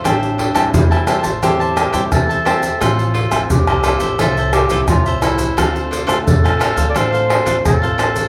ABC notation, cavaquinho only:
X:1
M:4/4
L:1/16
Q:1/4=87
K:Am
V:1 name="Cavaquinho"
[Gcea]2 [Gcea] [Gcea] z [cea] [Gcea] [cea] [Gcea] [cea] [Gcea] [Gcea] z [cea] [Gcea]2 | [FAce]2 [FAce] [FAce] z [Ace] [FAce] [Ace] [FAce] [Ace] [FAce] [FAce] z [Ace] [Ace]2 | [DAcf]2 [DAcf] [DAcf] z [Acf] [DAcf] [Acf] [DAcf] [Acf] [DAcf] [DAcf] z [Acf] [DAcf]2 |]